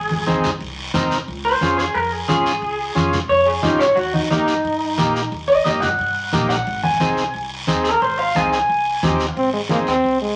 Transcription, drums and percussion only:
0.11 high conga
0.27 high conga, short guiro
0.44 low conga, short guiro
0.61 long guiro
0.94 high conga, low conga, short guiro
1.11 short guiro
1.28 long guiro
1.61 high conga, short guiro
1.79 short guiro
1.95 long guiro
2.29 high conga, short guiro
2.46 short guiro
2.62 long guiro
2.96 high conga, short guiro
3.13 low conga, short guiro
3.30 long guiro
3.63 high conga, low conga, short guiro
3.81 short guiro
3.97 long guiro
4.14 high conga
4.31 high conga, short guiro
4.48 short guiro
4.65 long guiro
4.98 high conga, short guiro
5.16 short guiro
5.32 long guiro
5.66 high conga, short guiro
5.82 low conga, short guiro
5.99 long guiro
6.33 high conga, low conga, short guiro
6.50 short guiro
6.67 long guiro
6.83 high conga
7.00 high conga, short guiro
7.17 short guiro
7.34 long guiro
7.67 high conga, short guiro
7.85 short guiro
8.02 long guiro
8.35 high conga, short guiro
8.53 short guiro
8.70 long guiro
9.03 high conga, low conga, short guiro
9.20 short guiro
9.36 high conga, long guiro
9.69 high conga, short guiro
9.87 short guiro
10.04 high conga, long guiro

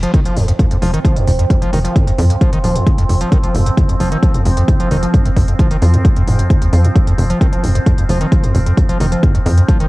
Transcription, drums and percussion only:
0.03 closed hi-hat
0.14 kick, closed hi-hat
0.25 closed hi-hat
0.37 open hi-hat
0.48 closed hi-hat
0.59 kick, closed hi-hat
0.71 closed hi-hat
0.82 open hi-hat
0.94 closed hi-hat
1.05 kick, closed hi-hat
1.17 closed hi-hat
1.28 open hi-hat
1.39 closed hi-hat
1.50 kick, closed hi-hat
1.62 closed hi-hat
1.73 open hi-hat
1.85 closed hi-hat
1.96 kick, closed hi-hat
2.07 closed hi-hat
2.18 open hi-hat
2.30 closed hi-hat
2.41 kick, closed hi-hat
2.53 closed hi-hat
2.64 open hi-hat
2.75 closed hi-hat
2.87 kick, closed hi-hat
2.98 closed hi-hat
3.09 open hi-hat
3.21 closed hi-hat
3.32 kick, closed hi-hat
3.44 closed hi-hat
3.55 open hi-hat
3.66 closed hi-hat
3.77 kick, closed hi-hat
3.89 closed hi-hat
4.00 open hi-hat
4.12 closed hi-hat
4.23 kick, closed hi-hat
4.35 closed hi-hat
4.46 open hi-hat
4.57 closed hi-hat
4.68 kick, closed hi-hat
4.80 closed hi-hat
4.91 open hi-hat
5.03 closed hi-hat
5.14 kick, closed hi-hat
5.25 closed hi-hat
5.37 kick, open hi-hat
5.48 closed hi-hat
5.59 kick, closed hi-hat
5.71 closed hi-hat
5.82 open hi-hat
5.94 closed hi-hat
6.05 kick, closed hi-hat
6.16 closed hi-hat
6.27 open hi-hat
6.39 closed hi-hat
6.50 kick, closed hi-hat
6.62 closed hi-hat
6.73 open hi-hat
6.85 closed hi-hat
6.96 kick, closed hi-hat
7.07 closed hi-hat
7.18 open hi-hat
7.30 closed hi-hat
7.41 kick, closed hi-hat
7.53 closed hi-hat
7.64 open hi-hat
7.75 closed hi-hat
7.87 kick, closed hi-hat
7.98 closed hi-hat
8.09 open hi-hat
8.21 closed hi-hat
8.32 kick, closed hi-hat
8.44 closed hi-hat
8.55 open hi-hat
8.66 closed hi-hat
8.77 kick, closed hi-hat
8.89 closed hi-hat
9.00 open hi-hat
9.12 closed hi-hat
9.23 kick, closed hi-hat
9.35 closed hi-hat
9.46 open hi-hat
9.57 closed hi-hat
9.68 kick, closed hi-hat
9.80 closed hi-hat

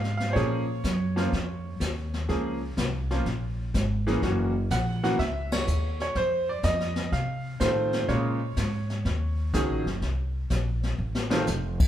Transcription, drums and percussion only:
0.04 snare
0.20 snare
0.36 brush sweep, kick, snare
0.84 kick, snare, hi-hat pedal
1.17 snare
1.32 brush sweep, kick, snare
1.81 kick, snare, hi-hat pedal
2.14 snare
2.29 brush sweep, kick, snare
2.77 kick, snare, hi-hat pedal
3.10 snare
3.26 brush sweep, kick, snare
3.74 kick, snare, hi-hat pedal
4.07 snare
4.22 brush sweep, kick, snare
4.70 kick, snare, hi-hat pedal
5.04 snare
5.19 brush sweep, kick, snare
5.52 snare, ride
5.67 hi-hat pedal
6.00 snare
6.15 brush sweep, kick, snare
6.63 kick, snare, hi-hat pedal
6.80 snare
6.96 snare
7.12 brush sweep, kick, snare
7.60 kick, snare, hi-hat pedal
7.93 snare
8.08 brush sweep, kick, snare
8.57 kick, snare, hi-hat pedal
8.90 snare
9.05 brush sweep, kick, snare
9.54 kick, snare, hi-hat pedal
9.87 snare
10.02 brush sweep, kick, snare
10.50 kick, snare, hi-hat pedal
10.83 snare
11.15 snare
11.31 snare
11.47 snare, hi-hat pedal
11.80 kick, crash

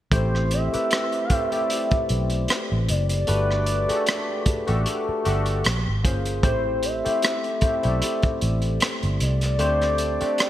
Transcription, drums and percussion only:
0.12 kick, closed hi-hat
0.35 cross-stick
0.51 closed hi-hat
0.74 closed hi-hat
0.91 cross-stick, closed hi-hat
1.12 closed hi-hat
1.30 kick, closed hi-hat
1.52 closed hi-hat
1.70 closed hi-hat
1.91 kick, closed hi-hat
2.09 closed hi-hat
2.30 closed hi-hat
2.48 cross-stick, closed hi-hat
2.89 closed hi-hat
3.09 closed hi-hat
3.27 closed hi-hat
3.51 cross-stick
3.66 closed hi-hat
3.89 closed hi-hat
4.06 cross-stick, closed hi-hat
4.46 kick, closed hi-hat
4.68 closed hi-hat
4.86 closed hi-hat
5.25 closed hi-hat
5.46 closed hi-hat
5.64 cross-stick, closed hi-hat
6.05 kick, closed hi-hat
6.26 closed hi-hat
6.43 kick, closed hi-hat
6.83 closed hi-hat
7.06 closed hi-hat
7.22 cross-stick, closed hi-hat
7.44 closed hi-hat
7.61 kick, closed hi-hat
7.83 closed hi-hat
8.02 closed hi-hat
8.22 kick, closed hi-hat
8.41 closed hi-hat
8.62 closed hi-hat
8.80 cross-stick, closed hi-hat
9.03 closed hi-hat
9.20 closed hi-hat
9.41 cross-stick, closed hi-hat
9.59 closed hi-hat
9.81 cross-stick, closed hi-hat
9.98 closed hi-hat
10.21 closed hi-hat
10.38 cross-stick, closed hi-hat

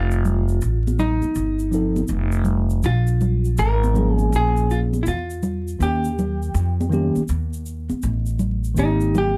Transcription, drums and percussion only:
0.11 shaker
0.25 low conga, shaker
0.48 shaker
0.61 shaker
0.87 high conga, shaker
0.99 low conga, shaker
1.22 high conga, shaker
1.35 shaker
1.59 shaker
1.73 shaker
1.96 high conga, shaker
2.08 shaker
2.32 shaker
2.45 low conga, shaker
2.70 shaker
2.83 shaker
3.07 shaker
3.21 low conga, shaker
3.45 shaker
3.57 shaker
3.84 high conga, shaker
3.95 low conga, shaker
4.19 high conga, shaker
4.33 shaker
4.57 shaker
4.70 shaker
4.93 high conga, shaker
5.06 shaker
5.30 shaker
5.43 low conga, shaker
5.68 shaker
5.81 shaker
6.04 shaker
6.19 low conga, shaker
6.42 shaker
6.55 shaker
6.81 high conga, shaker
6.92 low conga, shaker
7.16 high conga, shaker
7.28 shaker
7.53 shaker
7.66 shaker
7.90 high conga, shaker
8.02 shaker
8.26 shaker
8.39 low conga, shaker
8.64 shaker
8.77 shaker
9.00 shaker
9.15 low conga, shaker

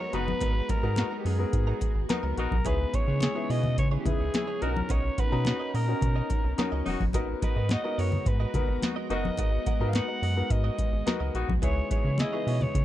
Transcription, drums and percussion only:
0.13 closed hi-hat
0.28 high conga
0.41 kick, closed hi-hat, muted conga
0.69 kick, closed hi-hat, muted conga
0.96 snare, closed hi-hat, high conga
1.26 open hi-hat
1.53 kick, closed hi-hat
1.81 kick, closed hi-hat, muted conga
2.09 snare, closed hi-hat, high conga
2.38 closed hi-hat
2.51 kick, high conga
2.65 kick, closed hi-hat, muted conga
2.93 kick, closed hi-hat, muted conga
3.21 snare, closed hi-hat, high conga
3.50 open hi-hat
3.63 low conga
3.78 kick, closed hi-hat
4.05 kick, closed hi-hat, muted conga, low conga
4.34 snare, closed hi-hat, high conga
4.62 closed hi-hat
4.76 high conga
4.89 kick, closed hi-hat, muted conga
5.18 kick, closed hi-hat, muted conga
5.45 snare, closed hi-hat, high conga
5.75 open hi-hat
6.01 kick, closed hi-hat, low conga
6.30 kick, closed hi-hat, muted conga
6.58 snare, closed hi-hat, high conga
6.86 open hi-hat, high conga
7.00 kick, high conga
7.13 kick, closed hi-hat, muted conga
7.42 kick, closed hi-hat, muted conga
7.69 snare, closed hi-hat, high conga
7.99 open hi-hat
8.12 low conga
8.26 kick, closed hi-hat, muted conga
8.54 kick, closed hi-hat, muted conga, low conga
8.82 snare, closed hi-hat, high conga
9.10 closed hi-hat
9.25 high conga
9.37 kick, closed hi-hat, muted conga
9.66 kick, closed hi-hat, muted conga
9.93 snare, closed hi-hat, high conga
10.23 open hi-hat
10.50 kick, closed hi-hat
10.79 kick, closed hi-hat, muted conga
11.07 snare, closed hi-hat, high conga
11.35 closed hi-hat
11.49 kick, high conga
11.62 kick, closed hi-hat, muted conga
11.91 kick, closed hi-hat, muted conga
12.18 snare, closed hi-hat, high conga
12.48 open hi-hat
12.61 low conga
12.74 kick, closed hi-hat, muted conga

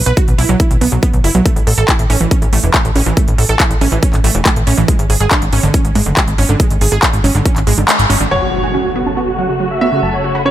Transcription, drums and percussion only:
0.06 closed hi-hat
0.17 kick, closed hi-hat
0.28 closed hi-hat
0.39 open hi-hat
0.49 closed hi-hat
0.60 kick, closed hi-hat
0.71 closed hi-hat
0.81 open hi-hat
0.92 closed hi-hat
1.03 kick, closed hi-hat
1.14 closed hi-hat
1.24 open hi-hat
1.35 closed hi-hat
1.46 kick, closed hi-hat
1.56 closed hi-hat
1.67 open hi-hat
1.78 closed hi-hat
1.88 kick, clap, closed hi-hat
1.99 closed hi-hat
2.10 open hi-hat
2.21 closed hi-hat
2.31 kick, closed hi-hat
2.42 closed hi-hat
2.53 open hi-hat
2.63 closed hi-hat
2.74 kick, clap, closed hi-hat
2.85 closed hi-hat
2.96 open hi-hat
3.06 closed hi-hat
3.17 kick, closed hi-hat
3.28 closed hi-hat
3.38 open hi-hat
3.49 closed hi-hat
3.60 kick, clap, closed hi-hat
3.71 closed hi-hat
3.81 open hi-hat
3.92 closed hi-hat
4.03 kick, closed hi-hat
4.13 clap, closed hi-hat
4.24 open hi-hat
4.35 closed hi-hat
4.46 kick, clap, closed hi-hat
4.56 closed hi-hat
4.67 open hi-hat
4.78 closed hi-hat
4.88 kick, closed hi-hat
4.99 closed hi-hat
5.10 open hi-hat
5.31 kick, clap, closed hi-hat
5.42 closed hi-hat
5.53 open hi-hat
5.63 closed hi-hat
5.74 kick, closed hi-hat
5.85 closed hi-hat
5.95 open hi-hat
6.06 closed hi-hat
6.17 kick, clap, closed hi-hat
6.28 closed hi-hat
6.38 open hi-hat
6.49 closed hi-hat
6.60 kick, closed hi-hat
6.70 closed hi-hat
6.81 open hi-hat
6.92 closed hi-hat
7.03 kick, clap, closed hi-hat
7.13 closed hi-hat
7.24 open hi-hat
7.35 closed hi-hat
7.46 kick, closed hi-hat
7.56 clap, closed hi-hat
7.67 open hi-hat
7.78 closed hi-hat
7.89 clap, closed hi-hat
7.99 closed hi-hat
8.10 open hi-hat
8.21 closed hi-hat

